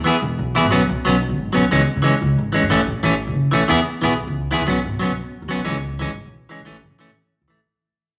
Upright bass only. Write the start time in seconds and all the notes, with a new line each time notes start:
Already playing: E2
0.22 E1
0.39 B1
0.64 G#1
0.73 B1
0.89 B1
1.06 B1
1.29 G#1
1.55 B1
1.71 C#2
1.97 C#3
2.22 C#2
2.38 G#1
2.62 F#2
2.70 A1
2.87 A1
3.03 A1
3.27 F#1
3.53 B1
3.70 E2
4.02 B1
4.27 C#2
4.60 C#2
4.68 B1
4.85 G#1
4.94 B1
5.10 B1
5.42 D#2
5.52 B1
5.67 C#2
6.01 G#1
6.26 B1
6.59 B1
6.68 A1
6.84 F#1
6.91 A1
7.08 A1
7.42 C#2
7.50 A1